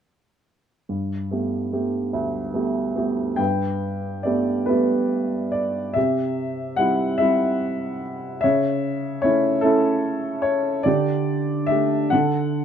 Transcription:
0.89 3.35 G2 soft
1.31 1.71 A3 soft
1.31 1.72 B3 soft
1.31 1.72 G4 soft
1.73 2.38 A3 soft
1.73 2.38 B3 soft
1.73 2.38 G4 soft
2.13 3.35 D2 soft
2.54 2.94 A3 soft
2.54 2.95 B3 soft
2.54 2.95 G4 soft
2.96 3.30 A3 soft
2.96 3.30 B3 soft
2.96 3.31 G4 soft
3.36 5.91 G2 soft
3.36 4.64 B4 soft
3.36 4.20 G5 medium
4.23 4.67 A3 soft
4.23 4.67 B3 soft
4.23 4.68 G4 soft
4.23 4.69 D5 soft
4.66 5.51 A3 soft
4.66 5.51 B3 soft
4.66 5.52 G4 soft
4.66 5.55 B4 soft
5.52 5.96 D5 medium
5.94 8.39 C3 soft
5.94 7.16 G4 soft
5.94 6.80 E5 medium
6.76 7.19 G3 soft
6.76 7.19 C4 soft
6.76 7.20 E4 soft
6.76 7.16 F#5 medium
7.18 8.00 G3 soft
7.18 8.00 C4 soft
7.18 8.01 E4 soft
7.18 8.07 E5 medium
8.41 10.82 C#3 soft
8.41 9.20 C#5 soft
8.41 9.25 E5 medium
9.22 9.62 A3 soft
9.22 9.62 C#4 soft
9.22 9.62 E4 soft
9.22 9.64 C#5 medium
9.61 10.42 A3 soft
9.61 10.42 C#4 soft
9.61 10.42 E4 soft
9.61 10.46 A4 medium
10.42 10.86 C#5 medium
10.83 12.08 D3 soft
10.83 11.69 G4 soft
10.83 11.71 D5 medium
11.67 12.11 A3 soft
11.67 12.11 D4 soft
11.67 12.11 G4 soft
11.67 12.12 E5 medium
12.10 12.65 D3 soft
12.10 12.65 A4 soft
12.10 12.65 F#5 medium

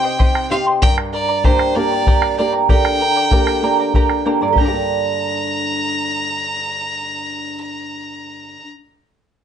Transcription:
0.00 0.79 C3 medium
0.00 0.48 C4 soft
0.00 0.49 D#4 soft
0.00 0.49 G4 medium
0.00 0.46 G5 loud
0.00 0.18 C6 medium
0.05 0.18 C5 soft
0.05 0.18 D#5 medium
0.19 0.50 G4 medium
0.19 0.49 C5 medium
0.19 0.50 D#5 medium
0.19 0.49 G5 medium
0.19 0.50 C6 medium
0.19 bombo low medium
0.35 bombo rim medium
0.50 0.81 C4 soft
0.50 0.81 D#4 soft
0.50 0.81 G4 medium
0.50 0.66 C5 medium
0.50 0.66 D#5 medium
0.50 0.65 F5 medium
0.50 0.66 G5 medium
0.50 0.66 C6 medium
0.67 0.82 C5 soft
0.67 0.82 D#5 soft
0.67 0.82 C6 medium
0.82 2.65 G2 medium
0.82 1.13 G4 medium
0.82 1.12 A#4 medium
0.82 1.12 D5 medium
0.82 0.96 G5 loud
0.82 1.11 G5 medium
0.82 1.13 A#5 medium
0.82 bombo low medium
0.98 bombo rim medium
1.13 1.29 A#4 medium
1.13 1.46 D5 medium
1.13 1.28 D5 medium
1.13 1.28 G5 medium
1.13 1.28 A#5 medium
1.29 1.44 A#4 soft
1.29 1.44 D5 soft
1.29 1.44 A#5 medium
1.44 1.75 A#3 soft
1.44 1.75 D4 soft
1.44 1.76 G4 medium
1.44 1.74 A#4 medium
1.44 1.77 C5 medium
1.44 1.75 D5 medium
1.44 1.74 G5 medium
1.44 1.75 A#5 medium
1.44 bombo low medium
1.59 bombo rim medium
1.75 2.36 A#3 medium
1.75 2.37 D4 soft
1.75 2.37 G4 medium
1.75 1.91 A#4 medium
1.75 2.38 D5 medium
1.75 1.91 D5 medium
1.75 1.91 G5 medium
1.75 1.91 A#5 medium
1.92 2.06 A#4 soft
1.92 2.06 D5 soft
1.92 2.06 A#5 soft
2.07 2.38 G4 medium
2.07 2.37 A#4 medium
2.07 2.38 D5 medium
2.07 2.37 G5 medium
2.07 2.38 A#5 medium
2.07 bombo low medium
2.22 bombo rim medium
2.38 2.99 A#3 soft
2.38 3.00 D4 soft
2.38 3.00 G4 medium
2.38 2.53 A#4 medium
2.38 2.52 D5 medium
2.38 2.53 D5 medium
2.38 2.54 G5 medium
2.38 2.52 A#5 medium
2.53 2.68 A#4 soft
2.53 2.68 D5 soft
2.53 2.69 A#5 soft
2.69 4.47 D3 medium
2.69 3.00 G4 medium
2.69 3.00 A#4 medium
2.69 3.00 D5 medium
2.69 2.99 G5 medium
2.69 4.22 G5 loud
2.69 3.01 A#5 medium
2.69 bombo low medium
2.85 bombo rim medium
3.01 3.16 A#4 medium
3.01 3.16 D5 medium
3.01 3.16 G5 medium
3.01 3.15 A#5 medium
3.16 3.32 A#4 soft
3.16 3.31 D5 soft
3.16 3.32 A#5 soft
3.16 bombo rim soft
3.31 3.61 A#3 medium
3.31 3.61 D4 soft
3.31 3.63 G4 medium
3.31 3.62 G4 medium
3.31 3.62 A#4 medium
3.31 3.62 D5 medium
3.31 3.62 G5 medium
3.31 3.63 A#5 medium
3.31 bombo rim soft
3.31 bombo low medium
3.47 bombo rim medium
3.62 4.23 A#3 soft
3.62 4.23 D4 soft
3.62 4.24 G4 medium
3.62 3.79 A#4 medium
3.62 3.79 D5 medium
3.62 3.79 G5 medium
3.62 3.78 A#5 medium
3.79 3.94 A#4 soft
3.79 3.94 D5 soft
3.79 3.95 A#5 soft
3.94 4.26 G4 medium
3.94 4.25 A#4 medium
3.94 4.25 D5 medium
3.94 4.24 G5 medium
3.94 4.25 A#5 medium
3.94 bombo low medium
4.10 bombo rim soft
4.25 4.53 A#3 soft
4.25 4.56 D4 soft
4.25 4.56 G4 soft
4.25 4.41 A#4 medium
4.25 4.41 D5 medium
4.25 4.41 G5 medium
4.25 4.41 A#5 medium
4.41 8.54 G2 soft
4.41 4.58 A#4 soft
4.41 4.57 D5 medium
4.41 4.57 A#5 medium
4.48 8.61 D3 soft
4.53 8.67 A#3 soft
4.53 8.70 G4 medium
4.53 bombo low medium
4.58 8.74 D4 soft
4.58 8.79 A#4 medium
4.58 8.75 G5 medium
4.58 8.71 A#5 medium
4.65 4.74 G4 soft
4.65 8.82 D5 medium
4.65 8.86 A#5 medium
4.74 8.87 D5 medium

